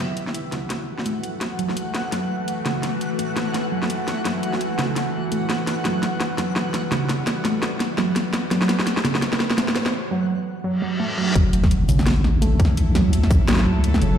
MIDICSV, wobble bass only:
0, 0, Header, 1, 2, 480
1, 0, Start_track
1, 0, Tempo, 355030
1, 1910, Time_signature, 4, 2, 24, 8
1, 19173, End_track
2, 0, Start_track
2, 0, Title_t, "Wobble bass"
2, 0, Program_c, 0, 39
2, 0, Note_on_c, 0, 30, 97
2, 704, Note_on_c, 0, 33, 95
2, 724, Note_off_c, 0, 30, 0
2, 1654, Note_off_c, 0, 33, 0
2, 1663, Note_on_c, 0, 35, 84
2, 2285, Note_on_c, 0, 37, 95
2, 2305, Note_off_c, 0, 35, 0
2, 2627, Note_on_c, 0, 33, 96
2, 2647, Note_off_c, 0, 37, 0
2, 3576, Note_off_c, 0, 33, 0
2, 3826, Note_on_c, 0, 30, 97
2, 4548, Note_on_c, 0, 33, 96
2, 4568, Note_off_c, 0, 30, 0
2, 5496, Note_off_c, 0, 33, 0
2, 5507, Note_on_c, 0, 35, 87
2, 6130, Note_on_c, 0, 37, 93
2, 6150, Note_off_c, 0, 35, 0
2, 6469, Note_on_c, 0, 33, 101
2, 6489, Note_off_c, 0, 37, 0
2, 6938, Note_off_c, 0, 33, 0
2, 6946, Note_on_c, 0, 37, 88
2, 7416, Note_off_c, 0, 37, 0
2, 7429, Note_on_c, 0, 30, 91
2, 7653, Note_off_c, 0, 30, 0
2, 7669, Note_on_c, 0, 28, 97
2, 8387, Note_on_c, 0, 30, 100
2, 8408, Note_off_c, 0, 28, 0
2, 9336, Note_off_c, 0, 30, 0
2, 9347, Note_on_c, 0, 33, 86
2, 9968, Note_on_c, 0, 35, 99
2, 9989, Note_off_c, 0, 33, 0
2, 10308, Note_on_c, 0, 30, 97
2, 10328, Note_off_c, 0, 35, 0
2, 11256, Note_off_c, 0, 30, 0
2, 11513, Note_on_c, 0, 28, 104
2, 12233, Note_on_c, 0, 30, 101
2, 12253, Note_off_c, 0, 28, 0
2, 13179, Note_off_c, 0, 30, 0
2, 15350, Note_on_c, 0, 30, 102
2, 16067, Note_on_c, 0, 33, 102
2, 16087, Note_off_c, 0, 30, 0
2, 17016, Note_off_c, 0, 33, 0
2, 17030, Note_on_c, 0, 35, 86
2, 17649, Note_on_c, 0, 37, 99
2, 17669, Note_off_c, 0, 35, 0
2, 17990, Note_on_c, 0, 33, 101
2, 18010, Note_off_c, 0, 37, 0
2, 18462, Note_off_c, 0, 33, 0
2, 18470, Note_on_c, 0, 37, 90
2, 18937, Note_off_c, 0, 37, 0
2, 18948, Note_on_c, 0, 30, 92
2, 19173, Note_off_c, 0, 30, 0
2, 19173, End_track
0, 0, End_of_file